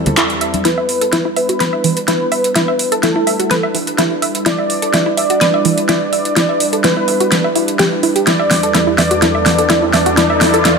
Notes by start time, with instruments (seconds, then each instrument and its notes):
Already playing: analog synth pad E2 G3 C4 E4 A4
0.06 closed hi-hat, high conga, low conga
0.17 synth pluck E4, clap, closed hi-hat
0.30 closed hi-hat
0.41 synth pluck E5, closed hi-hat
0.54 closed hi-hat, high conga
0.65 analog synth pad G3 D4 E4 B4, synth pluck E4, analog synth lead B4, snare, closed hi-hat
0.78 synth pluck E5
0.89 open hi-hat
1.01 synth pluck A4, closed hi-hat
1.13 synth pluck E4, snare, closed hi-hat
1.25 synth pluck E4
1.36 analog synth lead B4, synth pluck E5, open hi-hat
1.49 synth pluck F#4, closed hi-hat
1.60 synth pluck B4, snare, closed hi-hat
1.73 synth pluck E5
1.84 synth pluck E3, open hi-hat
1.97 closed hi-hat
2.08 synth pluck E4, analog synth lead B4, snare, closed hi-hat
2.32 synth pluck E5, open hi-hat
2.44 closed hi-hat
2.56 synth pluck E4, snare, closed hi-hat
2.68 synth pluck E5
2.79 open hi-hat
2.92 synth pluck A4, closed hi-hat
3.03 synth pluck E4, analog synth lead A4, snare, closed hi-hat
3.16 synth pluck E4
3.27 synth pluck E5, open hi-hat
3.39 synth pluck F#4, closed hi-hat
3.51 synth pluck B4, snare, closed hi-hat
3.63 synth pluck E5
3.75 synth pluck E3, open hi-hat
3.87 closed hi-hat
3.98 synth pluck E4, snare, closed hi-hat
4.22 synth pluck E5, open hi-hat
4.35 closed hi-hat
4.46 synth pluck E4, analog synth lead D5, snare, closed hi-hat
4.58 synth pluck E5
4.70 open hi-hat
4.82 synth pluck A4, closed hi-hat
4.94 synth pluck E4, snare, closed hi-hat
5.06 synth pluck E4
5.17 analog synth lead D5, synth pluck E5, open hi-hat
5.30 synth pluck F#4, closed hi-hat
5.41 synth pluck B4, snare, closed hi-hat
5.54 synth pluck E5
5.65 synth pluck E3, open hi-hat
5.78 closed hi-hat
5.89 synth pluck E4, analog synth lead D5, snare, closed hi-hat
6.13 synth pluck E5, open hi-hat
6.25 closed hi-hat
6.36 synth pluck E4, snare, closed hi-hat
6.49 synth pluck E5
6.60 open hi-hat
6.73 synth pluck A4, closed hi-hat
6.84 synth pluck E4, analog synth lead B4, snare, closed hi-hat
6.97 synth pluck E4
7.08 synth pluck E5, open hi-hat
7.20 synth pluck F#4, closed hi-hat
7.32 synth pluck B4, snare, closed hi-hat
7.44 synth pluck E5
7.56 synth pluck E4, open hi-hat
7.68 closed hi-hat
7.79 synth pluck G4, snare, closed hi-hat
8.03 synth pluck E4, open hi-hat
8.16 synth pluck G4, closed hi-hat
8.27 analog synth pad E2 A4, synth pluck E4, analog synth lead D5, snare, closed hi-hat, riser
8.39 synth pluck E5
8.51 snare, open hi-hat
8.63 synth pluck A4, closed hi-hat
8.75 synth pluck E4, snare, closed hi-hat
8.87 synth pluck E4
8.98 analog synth lead D5, synth pluck E5, snare, open hi-hat
9.11 synth pluck F#4, closed hi-hat
9.22 synth pluck E4, analog synth lead D5, snare, closed hi-hat
9.35 synth pluck E5
9.46 snare, open hi-hat
9.58 synth pluck A4, closed hi-hat
9.70 synth pluck E4, snare, closed hi-hat
9.82 synth pluck E4
9.94 analog synth lead D5, synth pluck E5, snare, open hi-hat
10.06 synth pluck F#4, closed hi-hat
10.17 synth pluck E4, analog synth lead D5, snare, closed hi-hat
10.30 synth pluck E5
10.41 snare, open hi-hat
10.54 synth pluck A4, closed hi-hat
10.65 synth pluck E4, snare, closed hi-hat